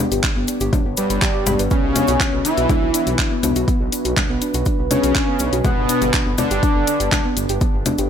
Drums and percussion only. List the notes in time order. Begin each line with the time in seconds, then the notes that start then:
0.12 closed hi-hat, cabasa
0.24 kick, clap, closed hi-hat, cabasa
0.48 closed hi-hat, cabasa
0.60 closed hi-hat, cabasa
0.73 kick, closed hi-hat, low conga, cabasa
0.97 closed hi-hat, cabasa
1.10 closed hi-hat, cabasa
1.22 kick, clap, closed hi-hat, cabasa
1.46 closed hi-hat, low conga, cabasa
1.59 closed hi-hat, cabasa
1.70 kick, closed hi-hat, cabasa
1.96 closed hi-hat, low conga, cabasa
2.07 closed hi-hat, cabasa
2.20 kick, clap, closed hi-hat, cabasa
2.45 closed hi-hat, cabasa
2.57 closed hi-hat, cabasa
2.69 kick, closed hi-hat, low conga, cabasa
2.94 closed hi-hat, cabasa
3.07 closed hi-hat, cabasa
3.19 kick, clap, closed hi-hat, cabasa
3.43 closed hi-hat, low conga, cabasa
3.56 closed hi-hat, cabasa
3.68 kick, closed hi-hat, cabasa
3.92 closed hi-hat, cabasa
4.05 closed hi-hat, cabasa
4.17 kick, clap, closed hi-hat, low conga, cabasa
4.42 closed hi-hat, cabasa
4.54 closed hi-hat, cabasa
4.65 kick, closed hi-hat, cabasa
4.91 closed hi-hat, low conga, cabasa
5.03 closed hi-hat, cabasa
5.15 kick, clap, closed hi-hat, cabasa
5.39 closed hi-hat, cabasa
5.53 closed hi-hat, cabasa
5.64 kick, closed hi-hat, low conga, cabasa
5.89 closed hi-hat, cabasa
6.02 closed hi-hat, cabasa
6.13 kick, clap, closed hi-hat, cabasa
6.38 closed hi-hat, low conga, cabasa
6.51 closed hi-hat, cabasa
6.63 kick, closed hi-hat, cabasa
6.87 closed hi-hat, cabasa
7.00 closed hi-hat, cabasa
7.12 kick, clap, closed hi-hat, low conga, cabasa
7.37 closed hi-hat, cabasa
7.49 closed hi-hat, cabasa
7.61 kick, closed hi-hat, cabasa
7.86 closed hi-hat, low conga, cabasa
7.98 closed hi-hat, cabasa